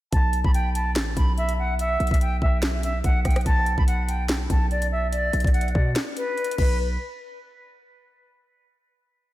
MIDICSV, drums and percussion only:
0, 0, Header, 1, 2, 480
1, 0, Start_track
1, 0, Key_signature, 2, "minor"
1, 0, Tempo, 416667
1, 144, Time_signature, 4, 2, 24, 8
1, 10752, End_track
2, 0, Start_track
2, 0, Title_t, "Drums"
2, 144, Note_on_c, 9, 36, 111
2, 144, Note_on_c, 9, 42, 86
2, 259, Note_off_c, 9, 36, 0
2, 259, Note_off_c, 9, 42, 0
2, 381, Note_on_c, 9, 42, 72
2, 497, Note_off_c, 9, 42, 0
2, 512, Note_on_c, 9, 36, 103
2, 627, Note_off_c, 9, 36, 0
2, 627, Note_on_c, 9, 42, 83
2, 743, Note_off_c, 9, 42, 0
2, 866, Note_on_c, 9, 42, 88
2, 982, Note_off_c, 9, 42, 0
2, 1103, Note_on_c, 9, 42, 88
2, 1105, Note_on_c, 9, 38, 118
2, 1218, Note_off_c, 9, 42, 0
2, 1220, Note_off_c, 9, 38, 0
2, 1344, Note_on_c, 9, 36, 92
2, 1344, Note_on_c, 9, 42, 72
2, 1459, Note_off_c, 9, 36, 0
2, 1459, Note_off_c, 9, 42, 0
2, 1585, Note_on_c, 9, 42, 51
2, 1700, Note_off_c, 9, 42, 0
2, 1713, Note_on_c, 9, 42, 84
2, 1828, Note_off_c, 9, 42, 0
2, 2065, Note_on_c, 9, 42, 86
2, 2181, Note_off_c, 9, 42, 0
2, 2305, Note_on_c, 9, 42, 43
2, 2385, Note_off_c, 9, 42, 0
2, 2385, Note_on_c, 9, 42, 57
2, 2432, Note_on_c, 9, 36, 102
2, 2465, Note_off_c, 9, 42, 0
2, 2465, Note_on_c, 9, 42, 76
2, 2548, Note_off_c, 9, 36, 0
2, 2548, Note_off_c, 9, 42, 0
2, 2548, Note_on_c, 9, 42, 84
2, 2663, Note_off_c, 9, 42, 0
2, 2785, Note_on_c, 9, 36, 98
2, 2900, Note_off_c, 9, 36, 0
2, 3023, Note_on_c, 9, 42, 89
2, 3025, Note_on_c, 9, 38, 115
2, 3138, Note_off_c, 9, 42, 0
2, 3140, Note_off_c, 9, 38, 0
2, 3264, Note_on_c, 9, 42, 79
2, 3379, Note_off_c, 9, 42, 0
2, 3504, Note_on_c, 9, 42, 83
2, 3505, Note_on_c, 9, 36, 93
2, 3619, Note_off_c, 9, 42, 0
2, 3620, Note_off_c, 9, 36, 0
2, 3744, Note_on_c, 9, 36, 99
2, 3744, Note_on_c, 9, 37, 70
2, 3744, Note_on_c, 9, 42, 73
2, 3808, Note_off_c, 9, 42, 0
2, 3808, Note_on_c, 9, 42, 61
2, 3859, Note_off_c, 9, 37, 0
2, 3860, Note_off_c, 9, 36, 0
2, 3871, Note_off_c, 9, 42, 0
2, 3871, Note_on_c, 9, 42, 50
2, 3872, Note_on_c, 9, 37, 99
2, 3928, Note_off_c, 9, 42, 0
2, 3928, Note_on_c, 9, 42, 42
2, 3984, Note_off_c, 9, 42, 0
2, 3984, Note_on_c, 9, 36, 109
2, 3984, Note_on_c, 9, 42, 87
2, 3987, Note_off_c, 9, 37, 0
2, 4100, Note_off_c, 9, 36, 0
2, 4100, Note_off_c, 9, 42, 0
2, 4221, Note_on_c, 9, 42, 72
2, 4336, Note_off_c, 9, 42, 0
2, 4352, Note_on_c, 9, 36, 105
2, 4467, Note_off_c, 9, 36, 0
2, 4467, Note_on_c, 9, 42, 83
2, 4583, Note_off_c, 9, 42, 0
2, 4706, Note_on_c, 9, 42, 88
2, 4822, Note_off_c, 9, 42, 0
2, 4942, Note_on_c, 9, 42, 92
2, 4944, Note_on_c, 9, 38, 122
2, 5058, Note_off_c, 9, 42, 0
2, 5060, Note_off_c, 9, 38, 0
2, 5183, Note_on_c, 9, 36, 91
2, 5184, Note_on_c, 9, 42, 72
2, 5298, Note_off_c, 9, 36, 0
2, 5299, Note_off_c, 9, 42, 0
2, 5424, Note_on_c, 9, 42, 50
2, 5540, Note_off_c, 9, 42, 0
2, 5551, Note_on_c, 9, 42, 84
2, 5667, Note_off_c, 9, 42, 0
2, 5904, Note_on_c, 9, 42, 85
2, 6020, Note_off_c, 9, 42, 0
2, 6144, Note_on_c, 9, 42, 71
2, 6224, Note_off_c, 9, 42, 0
2, 6224, Note_on_c, 9, 42, 66
2, 6271, Note_on_c, 9, 36, 103
2, 6304, Note_off_c, 9, 42, 0
2, 6304, Note_on_c, 9, 42, 61
2, 6384, Note_off_c, 9, 42, 0
2, 6384, Note_on_c, 9, 42, 54
2, 6387, Note_off_c, 9, 36, 0
2, 6464, Note_off_c, 9, 42, 0
2, 6464, Note_on_c, 9, 42, 50
2, 6545, Note_off_c, 9, 42, 0
2, 6545, Note_on_c, 9, 42, 43
2, 6624, Note_on_c, 9, 36, 95
2, 6660, Note_off_c, 9, 42, 0
2, 6740, Note_off_c, 9, 36, 0
2, 6862, Note_on_c, 9, 42, 90
2, 6864, Note_on_c, 9, 38, 120
2, 6977, Note_off_c, 9, 42, 0
2, 6979, Note_off_c, 9, 38, 0
2, 7103, Note_on_c, 9, 42, 77
2, 7218, Note_off_c, 9, 42, 0
2, 7344, Note_on_c, 9, 42, 50
2, 7424, Note_off_c, 9, 42, 0
2, 7424, Note_on_c, 9, 42, 67
2, 7504, Note_off_c, 9, 42, 0
2, 7504, Note_on_c, 9, 42, 81
2, 7584, Note_on_c, 9, 36, 106
2, 7584, Note_on_c, 9, 49, 91
2, 7619, Note_off_c, 9, 42, 0
2, 7699, Note_off_c, 9, 36, 0
2, 7699, Note_off_c, 9, 49, 0
2, 10752, End_track
0, 0, End_of_file